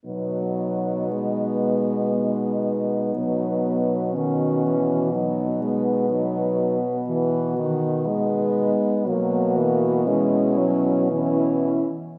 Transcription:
<<
  \new Staff \with { instrumentName = "French horn" } { \time 3/4 \key b \major \tempo 4 = 60 dis'2 dis'4~ | dis'4 fis'4 dis'4 | dis'8 r8 fis'4 dis'4 | fis'4 e'4 e'8 r8 | }
  \new Staff \with { instrumentName = "French horn" } { \time 3/4 \key b \major b2 b4~ | b4 cis'4 b4~ | b4. r8 b4 | ais4 cis'4 cis'8 r8 | }
  \new Staff \with { instrumentName = "French horn" } { \clef bass \time 3/4 \key b \major fis4 gis2 | fis4 dis8 e8 fis8 gis8 | fis8 r8 e8 dis8 gis4 | fis8 e8 gis8 fis8 e8 r8 | }
  \new Staff \with { instrumentName = "French horn" } { \clef bass \time 3/4 \key b \major b,2. | b,2.~ | b,2~ b,8 r8 | b,2~ b,8 r8 | }
>>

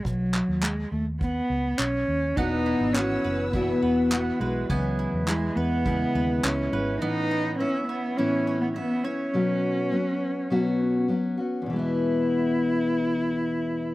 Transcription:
<<
  \new Staff \with { instrumentName = "String section" } { \time 4/4 \key e \major \tempo 4 = 103 r1 | <b' fis'' e'''>1 | r1 | r1 |
r1 | r1 | }
  \new Staff \with { instrumentName = "Mandolin" } { \time 4/4 \key e \major r1 | <b fis''>8 e'8 fis''8 b'8 e'8 b'8 fis''8 b'8 | <b gis''>8 e'8 gis''8 b'8 e'8 b'8 gis''8 b'8 | b8 e'8 e''8 cis''8 e'8 cis''8 e''8 cis''8 |
r1 | r1 | }
  \new Staff \with { instrumentName = "Cello" } { \time 4/4 \key e \major fis4 gis8 a8 b4 cis'4 | dis'4 cis'4 b8 b8 b8 gis8 | fis4 gis8 b4. cis'4 | dis'4 cis'8 b8 cis'8. b16 b8 cis'8~ |
cis'2. r4 | e'1 | }
  \new Staff \with { instrumentName = "Steel-string acoustic guitar" } { \time 4/4 \key e \major r1 | <e, b, e b fis'>4 <e b e' fis'>4 <e, b, e b e' fis'>4 <e b e' fis'>8 <e b e' fis'>8 | <cis e gis b e'>4 <e gis b e'>4 <cis e gis b e'>4 <e gis b e'>8 <gis b e'>8 | <a, e b cis'>4 <e b cis' e'>4 <a, e b cis' e'>4 <e b cis' e'>8 <b cis' e'>8 |
<b, fis b cis' fis'>4 <fis b cis' fis'>4 <b, fis b cis' fis'>4 <fis b cis' fis'>8 <b cis' fis'>8 | <e, b, e gis b e'>1 | }
  \new Staff \with { instrumentName = "Fingered electric bass" } { \clef bass \time 4/4 \key e \major b,,8. dis,8. dis,4 cis,8 b,,8 dis,8 | e,,8. gis,,8. fis,,4 e,,4 b,,8 | cis,8. e,8. e,4 dis,8 cis,8 gis,,8 | r1 |
r1 | r1 | }
  \new DrumStaff \with { instrumentName = "Drums" } \drummode { \time 4/4 bd8 hc8 hc4 bd4 hc4 | bd4 hc4 bd4 hc4 | bd4 hc4 bd4 hc4 | r4 r4 r4 r4 |
r4 r4 r4 r4 | r4 r4 r4 r4 | }
>>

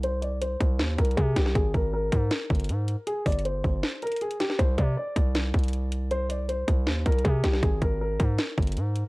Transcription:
<<
  \new Staff \with { instrumentName = "Grand piano" } { \time 4/4 \key aes \lydian \tempo 4 = 158 c''8 d''8 c''4. bes'8 aes'8 g'8 | aes'8 bes'8 bes'2. | aes'8 d''8 c''4. bes'8 aes'8 g'8 | c''8 d''8 d''2. |
c''8 d''8 c''4. bes'8 aes'8 g'8 | aes'8 bes'8 bes'2. | }
  \new Staff \with { instrumentName = "808-style bass" } { \clef bass \time 4/4 \key aes \lydian c,4. c,8 ees,8 c,8 c8 c,8 | aes,,8 aes,,4 aes,8 r8 g,,8 aes,8. r16 | r8 g,,4 g,,8 r2 | c,8 c8 r8 c,4 c,4.~ |
c,4. c,8 ees,8 c,8 c8 c,8 | aes,,8 aes,,4 aes,8 r8 g,,8 aes,8. r16 | }
  \new DrumStaff \with { instrumentName = "Drums" } \drummode { \time 4/4 hh8 hh8 hh8 <hh bd>8 \tuplet 3/2 { sn16 r16 r16 <hh bd>16 hh16 hh16 } <hh bd>8 <hh bd sn>16 sn16 | <hh bd>8 <hh bd>8 r8 <hh bd>8 <hh sn>8 <hh bd>32 hh32 hh32 hh32 hh8 hh8 | \tuplet 3/2 { hh16 r16 r16 <hh hho bd>16 hh16 hh16 } hh8 <hh bd>8 sn8 hh32 hh32 hh32 hh32 hh16 hh16 <hh sn>16 sn16 | <hh bd>8 <hh bd>8 r8 <hh bd>8 <hh sn>8 <hh bd>32 hh32 hh32 hh32 hh8 hh8 |
hh8 hh8 hh8 <hh bd>8 \tuplet 3/2 { sn16 r16 r16 <hh bd>16 hh16 hh16 } <hh bd>8 <hh bd sn>16 sn16 | <hh bd>8 <hh bd>8 r8 <hh bd>8 <hh sn>8 <hh bd>32 hh32 hh32 hh32 hh8 hh8 | }
>>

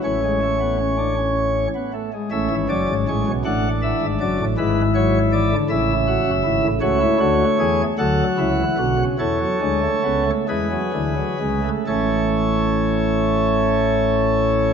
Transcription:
<<
  \new Staff \with { instrumentName = "Pipe organ" } { \time 6/8 \key a \major \tempo 4. = 52 << { cis''2~ cis''8 r8 | e''8 d''8 cis''8 fis''8 e''8 d''8 | b'8 cis''8 d''8 e''4. | cis''4. fis''4. |
cis''4. b'4. | <e cis' cis''>2. | } \\ { cis'2~ cis'8 r8 | cis'4. d'4. | e'4. e'8 fis'8 e'8 | fis'16 e'16 fis'8 gis'8 a'8 e'8 fis'8 |
a'4. gis'4. | a'2. | } >> }
  \new Staff \with { instrumentName = "Pipe organ" } { \clef bass \time 6/8 \key a \major << { e16 gis16 a16 b16 cis'16 d'16 cis'8. b16 a16 gis16 | a16 e16 fis8 gis8 a8 e8 fis8 | gis8 fis8 e16 d16 cis4. | a4. fis8. e16 d16 cis16 |
r16 fis16 gis16 a16 b16 a16 gis16 fis16 e16 fis16 gis16 a16 | a2. | } \\ { <a,, a,>2~ <a,, a,>8 r8 | <a,, a,>16 <gis,, gis,>16 <fis,, fis,>16 <gis,, gis,>16 <a,, a,>16 <b,, b,>16 <a,, a,>8. <gis,, gis,>16 <fis,, fis,>16 <a,, a,>16 | <gis,, gis,>4. <a,, a,>8. <fis,, fis,>16 <gis,, gis,>16 <a,, a,>16 | <cis, cis>8 <d, d>8 <e, e>8 <d, d>8 <cis, cis>8 <b,, b,>8 |
<e, e>8 <d, d>8 <cis, cis>8 <e, e>8 <d, d>8 <cis, cis>8 | <a,, a,>2. | } >> }
>>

